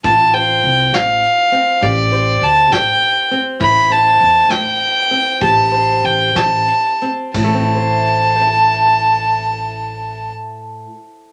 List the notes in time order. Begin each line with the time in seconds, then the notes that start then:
0.04 A1 A2 F4 A5, kick, closed hi-hat
0.34 C5 G5, closed hi-hat
0.64 C2, closed hi-hat
0.92 A1 G3 F5, snare, closed hi-hat
1.24 closed hi-hat
1.52 C4, closed hi-hat
1.81 A1 A2 G4 D5, kick, closed hi-hat
2.12 C5, closed hi-hat
2.41 D2 A5, closed hi-hat
2.70 A1 G3 G5, kick, snare, closed hi-hat
3.02 closed hi-hat
3.31 C4, closed hi-hat
3.60 A1 A2 E4 B5, kick, closed hi-hat
3.90 C5 A5, closed hi-hat
4.20 E2, closed hi-hat
4.49 A1 A3 G5, snare, closed hi-hat
4.80 closed hi-hat
5.10 C4, closed hi-hat
5.41 A1 A2 G4 A5, kick, closed hi-hat
5.72 C5, closed hi-hat
6.04 A1 G5, closed hi-hat
6.35 A1 G3 A5, kick, snare, closed hi-hat
6.68 closed hi-hat
7.01 C4, closed hi-hat
7.34 A1 A2 A5, kick, crash
7.44 A3
7.54 C4
7.64 E4
7.74 C5
8.35 C5
8.41 E5
8.47 A5